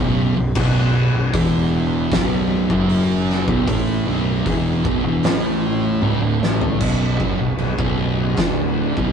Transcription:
0.00 0.33 B0 loud
0.00 0.35 B1 loud
0.00 0.35 B2 loud
0.36 0.54 B0 medium
0.36 0.55 B1 medium
0.55 1.10 B0 loud
0.55 1.13 B1 medium
0.55 1.13 B2 loud
0.55 kick loud
0.55 crash loud
1.13 1.31 B0 medium
1.13 1.33 B1 medium
1.33 2.08 E1 loud
1.33 2.10 E2 loud
1.33 2.10 E3 loud
1.33 kick loud
1.33 open hi-hat medium
2.11 2.66 B0 medium
2.11 2.69 B1 loud
2.11 2.69 B2 loud
2.11 kick loud
2.11 snare loud
2.11 open hi-hat medium
2.70 3.44 F#1 loud
2.70 3.47 F#2 medium
2.70 3.47 F#3 medium
2.70 kick loud
2.89 open hi-hat medium
3.30 snare soft
3.48 3.66 B0 medium
3.48 3.66 B1 medium
3.48 3.67 B2 medium
3.48 kick loud
3.67 4.04 A1 medium
3.67 4.06 A2 medium
3.67 4.06 A3 loud
3.67 kick loud
3.67 open hi-hat medium
4.06 4.42 B0 medium
4.06 4.45 B1 loud
4.06 4.45 B2 loud
4.46 4.82 E1 loud
4.46 4.84 E2 loud
4.46 4.84 E3 loud
4.46 kick loud
4.46 open hi-hat medium
4.85 5.03 B0 medium
4.85 5.04 B1 medium
4.85 5.04 B2 medium
4.85 kick loud
5.04 5.22 E1 loud
5.04 5.24 E2 medium
5.04 5.24 E3 loud
5.23 5.98 A1 medium
5.23 6.02 A2 loud
5.23 6.02 A3 loud
5.23 snare loud
5.23 open hi-hat medium
6.02 6.20 C#1 medium
6.02 6.21 C#2 loud
6.02 6.22 C#3 loud
6.02 high tom medium
6.21 6.39 D1 medium
6.21 6.41 D2 medium
6.21 6.41 D3 loud
6.40 6.77 A1 medium
6.40 6.81 A2 loud
6.40 6.81 A3 medium
6.40 snare medium
6.61 floor tom loud
6.81 7.17 B0 medium
6.81 7.19 B1 medium
6.81 7.19 B2 loud
6.81 kick loud
6.81 crash loud
6.81 crash medium
7.20 7.38 F#1 medium
7.20 7.39 F#2 loud
7.20 7.39 F#3 medium
7.20 kick loud
7.38 7.56 B0 medium
7.38 7.58 B1 medium
7.57 7.76 B0 medium
7.57 7.78 B1 medium
7.57 crash medium
7.78 8.33 B0 medium
7.78 8.37 B1 medium
7.78 8.37 B2 medium
7.78 kick loud
8.37 8.92 D1 medium
8.37 8.96 D2 medium
8.37 8.96 D3 loud
8.37 kick loud
8.37 snare loud
8.37 crash medium
8.97 9.12 B0 medium
8.97 9.12 B1 medium
8.97 9.12 B2 medium
8.97 kick medium

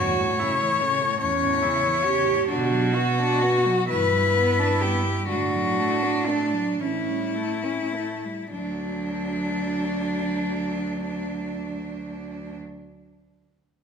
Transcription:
0.00 0.21 E2 loud
0.00 1.02 A2 loud
0.00 0.41 F#4 loud
0.00 1.19 C#5 loud
0.19 0.43 A2 medium
0.39 0.63 C#3 medium
0.39 0.82 E4 loud
0.62 0.84 E3 medium
0.81 1.04 C#3 medium
0.81 1.22 A3 loud
1.02 1.25 A2 medium
1.21 2.27 E2 loud
1.21 1.45 E2 medium
1.21 1.64 C#4 loud
1.21 2.46 C#5 loud
1.44 1.66 A2 loud
1.62 1.88 C#3 loud
1.62 2.05 E4 loud
1.86 2.08 E3 medium
2.04 2.28 C#3 medium
2.04 2.49 G4 loud
2.27 2.48 A2 medium
2.48 3.66 B2 loud
2.48 2.72 D3 medium
2.48 2.96 D4 loud
2.48 3.89 F#4 loud
2.71 2.96 F#3 medium
2.94 3.20 B3 medium
2.94 3.89 F#4 loud
3.19 3.44 D4 loud
3.42 3.68 B3 medium
3.66 3.90 F#3 medium
3.89 5.06 G2 loud
3.89 4.15 E3 medium
3.89 5.27 E4 loud
3.89 4.82 B4 loud
4.13 4.37 G3 medium
4.36 4.61 B3 loud
4.59 4.84 D4 medium
4.81 5.06 B3 medium
4.81 5.28 G4 loud
5.05 5.29 G3 medium
5.29 6.54 A2 loud
5.29 5.55 D3 medium
5.29 6.82 D4 loud
5.29 6.27 F#4 loud
5.54 5.80 F#3 medium
5.79 6.05 A3 medium
6.03 6.30 D4 medium
6.26 6.55 A3 medium
6.26 6.82 D4 loud
6.54 6.79 F#3 medium
6.80 8.25 A2 medium
6.80 7.10 E3 medium
6.80 7.65 C#4 loud
6.80 8.51 E4 loud
7.09 7.37 G3 medium
7.36 7.66 A3 medium
7.64 7.96 C#4 medium
7.95 8.27 A3 medium
8.25 8.53 G3 medium
8.51 12.56 D2 medium
8.51 12.56 F#3 medium
8.51 12.55 D4 loud

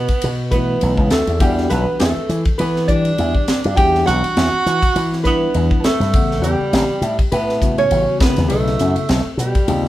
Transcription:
0.00 0.48 B3 medium
0.00 0.50 B4 medium
0.08 muted slap bass stroke soft
0.08 kick medium
0.08 ride medium
0.22 0.74 B2 medium
0.22 ride medium
0.51 1.08 E3 medium
0.51 1.08 A3 medium
0.51 1.09 B3 medium
0.51 1.07 B3 medium
0.51 1.09 E4 medium
0.51 1.12 B4 medium
0.51 kick medium
0.51 hi-hat pedal medium
0.51 ride medium
0.81 0.96 B1 medium
0.81 ride medium
0.97 1.09 C#2 medium
0.97 kick medium
1.10 1.26 D2 medium
1.10 1.39 A3 medium
1.10 1.39 A4 medium
1.10 snare loud
1.10 hi-hat pedal medium
1.10 ride medium
1.27 1.39 E2 medium
1.27 ride medium
1.39 1.66 E2 medium
1.39 2.16 E3 medium
1.39 2.17 G3 medium
1.39 1.68 G3 medium
1.39 2.17 D4 medium
1.39 2.17 F#4 medium
1.39 1.71 G4 medium
1.39 kick loud
1.39 ride medium
1.58 snare soft
1.70 1.85 B1 medium
1.70 1.98 B3 medium
1.70 2.00 B4 loud
1.70 snare soft
1.70 hi-hat pedal medium
1.70 ride medium
1.99 2.15 E2 medium
1.99 2.43 A3 medium
1.99 2.60 A4 medium
1.99 snare loud
1.99 ride medium
2.17 muted slap bass stroke soft
2.29 2.43 E3 medium
2.29 hi-hat pedal medium
2.29 ride medium
2.45 muted slap bass stroke soft
2.45 kick medium
2.45 ride medium
2.58 3.11 E3 medium
2.58 2.87 B3 medium
2.58 2.87 B4 medium
2.58 ride medium
2.76 snare soft
2.87 3.44 E3 medium
2.87 3.45 G3 medium
2.87 3.45 D4 medium
2.87 3.74 D4 medium
2.87 3.45 G4 medium
2.87 3.73 D5 medium
2.87 kick medium
2.87 hi-hat pedal medium
2.87 ride soft
3.05 ride medium
3.18 3.33 E2 medium
3.18 ride medium
3.35 kick medium
3.48 muted slap bass stroke soft
3.48 snare loud
3.48 hi-hat pedal medium
3.48 ride medium
3.64 3.77 G2 medium
3.64 ride medium
3.76 4.03 E2 loud
3.76 4.53 E3 medium
3.76 4.53 G3 medium
3.76 4.54 D4 medium
3.76 4.54 F#4 medium
3.76 4.05 G4 medium
3.76 4.05 G5 medium
3.76 kick loud
3.76 ride medium
3.95 snare soft
4.06 4.21 B1 medium
4.06 5.21 F#4 loud
4.06 5.21 F#5 loud
4.06 snare soft
4.06 hi-hat pedal medium
4.06 ride medium
4.24 ride medium
4.37 4.51 E2 medium
4.37 snare loud
4.37 ride medium
4.53 muted slap bass stroke soft
4.66 4.80 E3 medium
4.66 hi-hat pedal medium
4.66 ride medium
4.82 muted slap bass stroke soft
4.82 kick medium
4.82 ride medium
4.96 5.47 E3 medium
4.96 ride medium
5.13 snare soft
5.24 5.82 E3 medium
5.24 5.82 G3 medium
5.24 5.81 B3 medium
5.24 5.82 D4 medium
5.24 5.83 E4 medium
5.24 5.79 B4 medium
5.24 kick medium
5.24 hi-hat pedal medium
5.24 ride soft
5.54 5.69 E2 medium
5.54 ride medium
5.71 kick medium
5.84 6.40 A3 medium
5.84 6.41 A4 medium
5.84 muted slap bass stroke soft
5.84 snare loud
5.84 hi-hat pedal medium
5.84 ride medium
6.00 6.14 G2 medium
6.00 snare soft
6.00 ride medium
6.13 6.39 A1 medium
6.13 6.90 C#3 medium
6.13 6.91 G3 medium
6.13 6.91 B3 medium
6.13 6.91 F#5 medium
6.13 kick loud
6.13 ride medium
6.31 snare soft
6.42 6.57 E2 medium
6.42 7.28 G3 medium
6.42 7.27 G4 medium
6.42 hi-hat pedal medium
6.42 ride medium
6.59 muted slap bass stroke soft
6.73 6.87 A1 medium
6.73 snare loud
6.73 ride medium
6.89 muted slap bass stroke soft
7.01 7.16 A2 medium
7.01 hi-hat pedal medium
7.01 ride medium
7.19 muted slap bass stroke soft
7.19 kick medium
7.19 ride medium
7.32 7.83 A2 medium
7.32 7.76 B3 medium
7.32 7.74 B4 medium
7.32 ride medium
7.49 snare soft
7.61 8.18 C#3 medium
7.61 8.18 G3 medium
7.61 8.18 B3 medium
7.61 8.19 F#4 medium
7.61 kick medium
7.61 hi-hat pedal medium
7.61 ride soft
7.78 8.18 C#4 medium
7.78 8.21 C#5 loud
7.78 ride medium
7.91 8.05 A1 medium
7.91 ride medium
8.20 9.15 C#3 medium
8.20 9.16 A3 medium
8.20 9.16 B3 medium
8.20 8.48 B3 medium
8.20 9.16 E4 medium
8.20 8.51 B4 medium
8.20 kick loud
8.20 snare loud
8.20 hi-hat pedal medium
8.20 ride medium
8.36 8.50 E2 medium
8.36 snare soft
8.36 ride medium
8.48 8.76 B1 medium
8.48 9.35 A3 medium
8.48 9.34 A4 medium
8.48 ride medium
8.66 snare soft
8.79 8.94 F#2 medium
8.79 snare soft
8.79 hi-hat pedal medium
8.79 ride medium
8.96 muted slap bass stroke soft
8.96 ride medium
9.09 9.23 B1 medium
9.09 snare loud
9.09 ride medium
9.37 9.52 B2 medium
9.37 9.88 G3 medium
9.37 9.88 G4 medium
9.37 hi-hat pedal medium
9.37 ride soft
9.55 kick medium
9.55 ride medium
9.68 9.88 D#2 medium
9.68 9.88 C#3 medium
9.68 9.88 G3 medium
9.68 9.88 C4 medium
9.68 9.88 F4 medium
9.68 ride medium

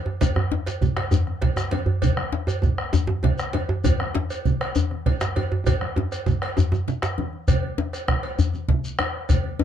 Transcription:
0.06 djembe slap soft
0.06 djembe tone medium
0.06 high conga soft
0.21 bombo low medium
0.21 cowbell medium
0.21 djembe slap medium
0.21 low conga medium
0.21 djembe bass medium
0.21 shekere medium
0.36 bombo rim medium
0.36 high conga medium
0.36 djembe bass medium
0.52 djembe slap medium
0.52 djembe tone medium
0.52 high conga soft
0.66 cowbell soft
0.66 djembe slap soft
0.66 djembe slap medium
0.66 shekere soft
0.81 bombo low medium
0.81 djembe tone medium
0.81 high conga medium
0.81 low conga medium
0.81 shekere soft
0.97 bombo rim medium
0.97 cowbell soft
0.97 djembe slap medium
1.11 bombo rim soft
1.11 djembe tone medium
1.11 djembe bass medium
1.11 shekere medium
1.27 bombo rim soft
1.27 high conga medium
1.42 bombo low loud
1.42 cowbell soft
1.42 djembe slap medium
1.42 low conga medium
1.56 bombo rim medium
1.56 djembe tone medium
1.56 shekere soft
1.71 cowbell medium
1.71 djembe slap medium
1.71 djembe tone medium
1.71 high conga medium
1.86 djembe bass medium
2.02 bombo low loud
2.02 cowbell medium
2.02 low conga medium
2.02 djembe bass medium
2.02 shekere medium
2.17 bombo rim medium
2.17 high conga medium
2.32 djembe slap medium
2.32 djembe tone medium
2.47 cowbell soft
2.47 djembe slap soft
2.47 djembe tone loud
2.47 shekere soft
2.62 bombo low medium
2.62 djembe tone medium
2.62 low conga medium
2.62 shekere soft
2.78 bombo rim medium
2.93 bombo rim soft
2.93 djembe slap medium
2.93 djembe tone medium
2.93 djembe bass medium
2.93 shekere medium
3.07 bombo rim soft
3.07 djembe tone loud
3.07 high conga medium
3.23 bombo low loud
3.23 cowbell soft
3.23 djembe slap medium
3.23 djembe tone medium
3.23 low conga medium
3.38 bombo rim medium
3.38 shekere soft
3.53 cowbell soft
3.53 djembe slap medium
3.53 high conga medium
3.53 djembe tone medium
3.69 djembe tone loud
3.84 bombo low loud
3.84 cowbell medium
3.84 djembe tone medium
3.84 djembe bass medium
3.84 low conga medium
3.84 shekere medium
4.00 bombo rim medium
4.00 high conga medium
4.15 djembe slap medium
4.15 djembe tone medium
4.15 high conga soft
4.30 cowbell soft
4.30 djembe slap soft
4.30 shekere soft
4.45 bombo low medium
4.45 high conga medium
4.45 low conga medium
4.45 shekere soft
4.61 bombo rim medium
4.61 cowbell soft
4.75 bombo rim soft
4.75 djembe tone medium
4.75 djembe bass medium
4.75 shekere medium
4.91 bombo rim soft
4.91 high conga medium
5.06 bombo low medium
5.06 cowbell soft
5.06 djembe slap medium
5.06 low conga medium
5.21 bombo rim medium
5.21 djembe slap loud
5.21 shekere soft
5.36 cowbell medium
5.36 high conga medium
5.36 djembe tone medium
5.52 djembe tone medium
5.66 bombo rim soft
5.66 bombo low medium
5.66 cowbell medium
5.66 djembe slap soft
5.66 djembe tone loud
5.66 low conga medium
5.66 djembe bass medium
5.66 shekere medium
5.81 bombo rim medium
5.81 high conga medium
5.96 bombo rim soft
5.96 djembe slap medium
5.96 djembe tone loud
5.96 djembe tone medium
6.12 bombo rim soft
6.12 cowbell soft
6.12 shekere soft
6.26 bombo rim soft
6.26 bombo low medium
6.26 djembe tone loud
6.26 high conga medium
6.26 low conga medium
6.26 shekere soft
6.42 bombo rim medium
6.42 cowbell soft
6.57 bombo rim soft
6.57 djembe tone loud
6.57 djembe tone medium
6.57 djembe bass medium
6.57 shekere medium
6.72 bombo rim soft
6.72 djembe tone loud
6.72 high conga medium
6.72 shekere soft
6.88 djembe slap medium
6.88 low conga medium
6.88 shekere soft
7.02 bombo rim medium
7.02 djembe slap loud
7.02 shekere soft
7.18 bombo rim soft
7.18 djembe tone medium
7.18 high conga medium
7.33 djembe slap soft
7.48 bombo low medium
7.48 cowbell medium
7.48 djembe slap soft
7.48 djembe bass medium
7.48 low conga medium
7.48 shekere medium
7.63 high conga medium
7.78 bombo rim soft
7.78 djembe slap medium
7.78 djembe tone medium
7.78 high conga soft
7.93 bombo rim soft
7.93 cowbell soft
7.93 shekere soft
8.08 bombo rim medium
8.08 bombo low medium
8.08 high conga medium
8.08 low conga medium
8.23 cowbell soft
8.23 djembe slap soft
8.39 bombo rim soft
8.39 djembe slap soft
8.39 djembe tone medium
8.39 djembe bass medium
8.39 shekere medium
8.54 djembe slap soft
8.54 high conga medium
8.54 shekere soft
8.68 bombo low loud
8.68 djembe slap medium
8.68 low conga medium
8.84 shekere soft
8.99 bombo rim loud
8.99 cowbell soft
8.99 high conga medium
8.99 djembe tone medium
9.29 bombo low medium
9.29 cowbell medium
9.29 djembe slap soft
9.29 low conga medium
9.29 djembe bass medium
9.29 shekere medium
9.44 high conga medium
9.59 bombo rim soft
9.59 djembe slap medium
9.59 djembe tone medium

